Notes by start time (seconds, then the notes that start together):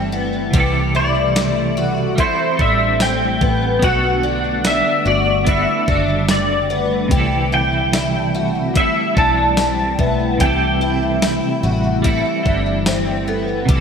Already playing: G1 E3 G3 A3 C4 E4 A4 A5
0.12 B3
0.51 C2 C3 E3 G3 G4 A4, kick, closed hi-hat
0.55 G3 C4 E4
0.60 A4
0.95 E4 G4 D5
1.20 B5
1.36 E4, snare, closed hi-hat, tambourine
1.45 C6
1.77 F#4
2.15 G3 C4 E4, kick, closed hi-hat
2.20 E4 A4 C5
2.57 A1 D4 E4 A4, kick
2.61 G3 C4 E5
3.00 C4 G5, snare, closed hi-hat, tambourine
3.41 A1 B3, kick
3.79 B1 D3 B3 D4 F#4, kick, closed hi-hat
3.84 F#4 F#5
3.89 A4
4.23 D4
4.64 D4 E5, snare, closed hi-hat, tambourine
5.05 G1 F#4 D5
5.45 B3 D4 E4, kick, closed hi-hat
5.49 F#4 A4 E5
5.86 F#1 D4 F#4 A4, kick
5.92 D4
6.29 C4 D5, snare, closed hi-hat, tambourine
6.70 B3
7.08 C2 C3 E3 G3 E4 G4, kick, closed hi-hat
7.12 G3 C4 E4
7.18 A4
7.52 E4 G5
7.93 E4 D5, snare, closed hi-hat, tambourine
8.19 A5
8.35 F#4
8.44 B5
8.74 G3 C4 E4 E5, kick, closed hi-hat
8.78 E4 A4
9.15 B1 D4 E4 A4 A5, kick
9.19 G3 C4
9.57 C4, snare, closed hi-hat, tambourine
9.99 B1 B3 E5, kick
10.24 G5
10.37 C2 C3 E3 G4 G5, kick, closed hi-hat
10.41 G3 C4 E4
10.46 A4 A5
10.81 E4
11.22 E4, snare, closed hi-hat, tambourine
11.63 A1 F#4
12.02 G3 C4 E4, kick, closed hi-hat
12.06 E4 A4
12.43 G1 D4 E4 A4, kick
12.47 G3 C4
12.86 C4, snare, closed hi-hat, tambourine
13.28 B3 A4
13.65 C2 C3 E3 G4, kick, closed hi-hat
13.70 G3 C4 E4
13.75 A4